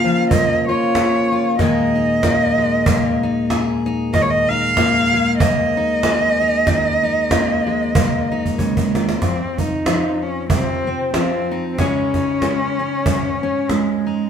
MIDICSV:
0, 0, Header, 1, 5, 480
1, 0, Start_track
1, 0, Tempo, 637620
1, 1192, Time_signature, 4, 2, 24, 8
1, 10764, End_track
2, 0, Start_track
2, 0, Title_t, "Cello"
2, 0, Program_c, 0, 42
2, 0, Note_on_c, 0, 77, 90
2, 204, Note_off_c, 0, 77, 0
2, 233, Note_on_c, 0, 75, 89
2, 485, Note_off_c, 0, 75, 0
2, 513, Note_on_c, 0, 73, 82
2, 1166, Note_off_c, 0, 73, 0
2, 1200, Note_on_c, 0, 75, 84
2, 2605, Note_off_c, 0, 75, 0
2, 3113, Note_on_c, 0, 75, 90
2, 3175, Note_on_c, 0, 73, 78
2, 3186, Note_off_c, 0, 75, 0
2, 3238, Note_on_c, 0, 75, 96
2, 3249, Note_off_c, 0, 73, 0
2, 3380, Note_on_c, 0, 77, 99
2, 3391, Note_off_c, 0, 75, 0
2, 4051, Note_off_c, 0, 77, 0
2, 4056, Note_on_c, 0, 75, 92
2, 6431, Note_off_c, 0, 75, 0
2, 6466, Note_on_c, 0, 56, 73
2, 6917, Note_off_c, 0, 56, 0
2, 6938, Note_on_c, 0, 60, 73
2, 7219, Note_on_c, 0, 63, 69
2, 7230, Note_off_c, 0, 60, 0
2, 7697, Note_on_c, 0, 61, 65
2, 7708, Note_off_c, 0, 63, 0
2, 7902, Note_off_c, 0, 61, 0
2, 7906, Note_on_c, 0, 60, 79
2, 8358, Note_off_c, 0, 60, 0
2, 8388, Note_on_c, 0, 60, 67
2, 8793, Note_off_c, 0, 60, 0
2, 8825, Note_on_c, 0, 60, 59
2, 8883, Note_on_c, 0, 61, 85
2, 8894, Note_off_c, 0, 60, 0
2, 10327, Note_on_c, 0, 56, 71
2, 10338, Note_off_c, 0, 61, 0
2, 10764, Note_off_c, 0, 56, 0
2, 10764, End_track
3, 0, Start_track
3, 0, Title_t, "Steel-string acoustic guitar"
3, 0, Program_c, 1, 25
3, 0, Note_on_c, 1, 58, 56
3, 0, Note_on_c, 1, 65, 49
3, 0, Note_on_c, 1, 68, 60
3, 32, Note_on_c, 1, 53, 53
3, 246, Note_off_c, 1, 58, 0
3, 249, Note_on_c, 1, 58, 53
3, 507, Note_off_c, 1, 65, 0
3, 519, Note_on_c, 1, 65, 57
3, 724, Note_off_c, 1, 68, 0
3, 728, Note_on_c, 1, 68, 54
3, 985, Note_off_c, 1, 65, 0
3, 994, Note_on_c, 1, 65, 56
3, 1172, Note_off_c, 1, 65, 0
3, 1194, Note_on_c, 1, 51, 65
3, 1196, Note_off_c, 1, 53, 0
3, 1203, Note_on_c, 1, 56, 57
3, 1204, Note_off_c, 1, 58, 0
3, 1207, Note_on_c, 1, 58, 58
3, 1213, Note_on_c, 1, 63, 58
3, 1214, Note_off_c, 1, 68, 0
3, 1217, Note_on_c, 1, 68, 65
3, 1467, Note_off_c, 1, 63, 0
3, 1470, Note_on_c, 1, 63, 50
3, 1680, Note_off_c, 1, 58, 0
3, 1683, Note_on_c, 1, 58, 60
3, 1938, Note_off_c, 1, 56, 0
3, 1941, Note_on_c, 1, 56, 59
3, 2161, Note_off_c, 1, 58, 0
3, 2164, Note_on_c, 1, 58, 60
3, 2431, Note_off_c, 1, 63, 0
3, 2434, Note_on_c, 1, 63, 55
3, 2636, Note_off_c, 1, 68, 0
3, 2639, Note_on_c, 1, 68, 60
3, 2903, Note_off_c, 1, 63, 0
3, 2906, Note_on_c, 1, 63, 64
3, 3110, Note_off_c, 1, 51, 0
3, 3113, Note_on_c, 1, 51, 69
3, 3388, Note_off_c, 1, 63, 0
3, 3391, Note_on_c, 1, 63, 53
3, 3586, Note_off_c, 1, 58, 0
3, 3589, Note_on_c, 1, 58, 62
3, 3612, Note_off_c, 1, 56, 0
3, 3612, Note_off_c, 1, 68, 0
3, 3863, Note_on_c, 1, 56, 62
3, 4074, Note_off_c, 1, 58, 0
3, 4077, Note_on_c, 1, 58, 55
3, 4341, Note_off_c, 1, 63, 0
3, 4344, Note_on_c, 1, 63, 57
3, 4549, Note_on_c, 1, 68, 66
3, 4824, Note_off_c, 1, 63, 0
3, 4827, Note_on_c, 1, 63, 63
3, 5005, Note_off_c, 1, 51, 0
3, 5025, Note_on_c, 1, 51, 71
3, 5291, Note_off_c, 1, 63, 0
3, 5294, Note_on_c, 1, 63, 57
3, 5499, Note_off_c, 1, 58, 0
3, 5508, Note_on_c, 1, 58, 60
3, 5531, Note_off_c, 1, 56, 0
3, 5531, Note_off_c, 1, 68, 0
3, 5771, Note_on_c, 1, 56, 61
3, 5978, Note_off_c, 1, 58, 0
3, 5987, Note_on_c, 1, 58, 56
3, 6251, Note_off_c, 1, 63, 0
3, 6260, Note_on_c, 1, 63, 53
3, 6458, Note_off_c, 1, 51, 0
3, 6461, Note_on_c, 1, 49, 59
3, 6737, Note_off_c, 1, 49, 0
3, 6743, Note_on_c, 1, 51, 62
3, 6919, Note_off_c, 1, 56, 0
3, 6923, Note_off_c, 1, 63, 0
3, 6945, Note_on_c, 1, 41, 62
3, 6948, Note_off_c, 1, 58, 0
3, 6950, Note_off_c, 1, 51, 0
3, 7220, Note_on_c, 1, 63, 44
3, 7426, Note_on_c, 1, 53, 54
3, 7908, Note_on_c, 1, 48, 51
3, 8183, Note_on_c, 1, 60, 46
3, 8377, Note_off_c, 1, 53, 0
3, 8386, Note_on_c, 1, 53, 50
3, 8389, Note_off_c, 1, 48, 0
3, 8665, Note_off_c, 1, 63, 0
3, 8668, Note_on_c, 1, 63, 54
3, 8846, Note_off_c, 1, 60, 0
3, 8868, Note_off_c, 1, 41, 0
3, 8868, Note_off_c, 1, 53, 0
3, 8871, Note_on_c, 1, 49, 63
3, 8877, Note_on_c, 1, 56, 51
3, 8884, Note_on_c, 1, 61, 55
3, 8888, Note_off_c, 1, 63, 0
3, 8891, Note_on_c, 1, 63, 51
3, 8894, Note_on_c, 1, 68, 57
3, 9148, Note_off_c, 1, 63, 0
3, 9151, Note_on_c, 1, 63, 45
3, 9340, Note_off_c, 1, 56, 0
3, 9349, Note_on_c, 1, 56, 53
3, 9621, Note_off_c, 1, 61, 0
3, 9630, Note_on_c, 1, 61, 50
3, 9832, Note_off_c, 1, 49, 0
3, 9837, Note_on_c, 1, 44, 54
3, 10102, Note_off_c, 1, 61, 0
3, 10111, Note_on_c, 1, 61, 51
3, 10304, Note_off_c, 1, 56, 0
3, 10313, Note_on_c, 1, 56, 51
3, 10585, Note_off_c, 1, 63, 0
3, 10588, Note_on_c, 1, 63, 52
3, 10764, Note_off_c, 1, 44, 0
3, 10764, Note_off_c, 1, 56, 0
3, 10764, Note_off_c, 1, 61, 0
3, 10764, Note_off_c, 1, 63, 0
3, 10764, Note_off_c, 1, 68, 0
3, 10764, End_track
4, 0, Start_track
4, 0, Title_t, "Tonewheel organ"
4, 0, Program_c, 2, 16
4, 0, Note_on_c, 2, 49, 62
4, 0, Note_on_c, 2, 58, 59
4, 0, Note_on_c, 2, 65, 72
4, 1173, Note_off_c, 2, 49, 0
4, 1174, Note_off_c, 2, 65, 0
4, 1176, Note_off_c, 2, 58, 0
4, 1195, Note_on_c, 2, 39, 68
4, 1195, Note_on_c, 2, 46, 58
4, 1196, Note_on_c, 2, 56, 70
4, 4043, Note_off_c, 2, 46, 0
4, 4072, Note_on_c, 2, 60, 57
4, 6920, Note_off_c, 2, 39, 0
4, 6921, Note_off_c, 2, 56, 0
4, 6921, Note_off_c, 2, 60, 0
4, 10764, End_track
5, 0, Start_track
5, 0, Title_t, "Cajon"
5, 132, Note_on_c, 9, 38, 22
5, 207, Note_off_c, 9, 38, 0
5, 233, Note_on_c, 9, 36, 85
5, 309, Note_off_c, 9, 36, 0
5, 715, Note_on_c, 9, 38, 81
5, 791, Note_off_c, 9, 38, 0
5, 1198, Note_on_c, 9, 36, 74
5, 1198, Note_on_c, 9, 38, 22
5, 1273, Note_off_c, 9, 36, 0
5, 1273, Note_off_c, 9, 38, 0
5, 1472, Note_on_c, 9, 38, 24
5, 1548, Note_off_c, 9, 38, 0
5, 1679, Note_on_c, 9, 36, 61
5, 1679, Note_on_c, 9, 38, 74
5, 1754, Note_off_c, 9, 36, 0
5, 1754, Note_off_c, 9, 38, 0
5, 2055, Note_on_c, 9, 38, 22
5, 2130, Note_off_c, 9, 38, 0
5, 2155, Note_on_c, 9, 36, 88
5, 2230, Note_off_c, 9, 36, 0
5, 2636, Note_on_c, 9, 38, 73
5, 2712, Note_off_c, 9, 38, 0
5, 3114, Note_on_c, 9, 36, 78
5, 3114, Note_on_c, 9, 38, 23
5, 3189, Note_off_c, 9, 36, 0
5, 3189, Note_off_c, 9, 38, 0
5, 3384, Note_on_c, 9, 38, 24
5, 3459, Note_off_c, 9, 38, 0
5, 3590, Note_on_c, 9, 36, 61
5, 3590, Note_on_c, 9, 38, 84
5, 3665, Note_off_c, 9, 36, 0
5, 3665, Note_off_c, 9, 38, 0
5, 3969, Note_on_c, 9, 38, 22
5, 4044, Note_off_c, 9, 38, 0
5, 4067, Note_on_c, 9, 36, 85
5, 4143, Note_off_c, 9, 36, 0
5, 4542, Note_on_c, 9, 38, 90
5, 4617, Note_off_c, 9, 38, 0
5, 5020, Note_on_c, 9, 36, 91
5, 5020, Note_on_c, 9, 38, 26
5, 5096, Note_off_c, 9, 36, 0
5, 5096, Note_off_c, 9, 38, 0
5, 5300, Note_on_c, 9, 38, 27
5, 5375, Note_off_c, 9, 38, 0
5, 5503, Note_on_c, 9, 36, 63
5, 5503, Note_on_c, 9, 38, 91
5, 5578, Note_off_c, 9, 36, 0
5, 5578, Note_off_c, 9, 38, 0
5, 5882, Note_on_c, 9, 38, 26
5, 5958, Note_off_c, 9, 38, 0
5, 5986, Note_on_c, 9, 36, 92
5, 6062, Note_off_c, 9, 36, 0
5, 6258, Note_on_c, 9, 38, 28
5, 6334, Note_off_c, 9, 38, 0
5, 6365, Note_on_c, 9, 36, 48
5, 6440, Note_off_c, 9, 36, 0
5, 6466, Note_on_c, 9, 36, 57
5, 6541, Note_off_c, 9, 36, 0
5, 6601, Note_on_c, 9, 36, 67
5, 6677, Note_off_c, 9, 36, 0
5, 6738, Note_on_c, 9, 38, 69
5, 6813, Note_off_c, 9, 38, 0
5, 6840, Note_on_c, 9, 38, 73
5, 6915, Note_off_c, 9, 38, 0
5, 6939, Note_on_c, 9, 36, 80
5, 6939, Note_on_c, 9, 38, 25
5, 7015, Note_off_c, 9, 36, 0
5, 7015, Note_off_c, 9, 38, 0
5, 7215, Note_on_c, 9, 36, 66
5, 7290, Note_off_c, 9, 36, 0
5, 7424, Note_on_c, 9, 38, 90
5, 7499, Note_off_c, 9, 38, 0
5, 7903, Note_on_c, 9, 36, 85
5, 7978, Note_off_c, 9, 36, 0
5, 8385, Note_on_c, 9, 38, 79
5, 8460, Note_off_c, 9, 38, 0
5, 8872, Note_on_c, 9, 36, 82
5, 8872, Note_on_c, 9, 38, 24
5, 8947, Note_off_c, 9, 36, 0
5, 8947, Note_off_c, 9, 38, 0
5, 9140, Note_on_c, 9, 36, 59
5, 9140, Note_on_c, 9, 38, 24
5, 9215, Note_off_c, 9, 36, 0
5, 9215, Note_off_c, 9, 38, 0
5, 9348, Note_on_c, 9, 38, 73
5, 9423, Note_off_c, 9, 38, 0
5, 9830, Note_on_c, 9, 36, 82
5, 9906, Note_off_c, 9, 36, 0
5, 10309, Note_on_c, 9, 38, 75
5, 10385, Note_off_c, 9, 38, 0
5, 10764, End_track
0, 0, End_of_file